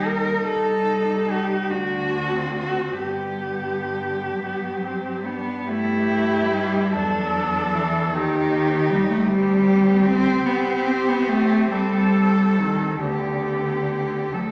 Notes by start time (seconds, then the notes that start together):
Already playing: D#2 G3 D#4
0.07 A#4
0.46 C2 G3 D#4 A4
1.31 G4
1.70 D2 D3 D4 F#4
2.33 C4
2.55 F#4
3.00 G2 D3 B3 G4
4.34 F#3 B3
4.80 C4
5.24 B3 D4
5.68 G2 A3 E4 G4
6.51 G3
6.92 E2 F#3 D4 A4
7.74 E3
8.13 D#2 D#3 D#4 G4
8.89 G3
9.09 A3
9.27 D2 G3 C4 G4
10.06 C4
10.46 C2 B3 G4
10.86 C4
11.08 B3
11.28 A3
11.71 C2 G3 A4
12.58 D#3
13.01 D2 D3 B3 G4
14.32 D2 F#3 A3 A4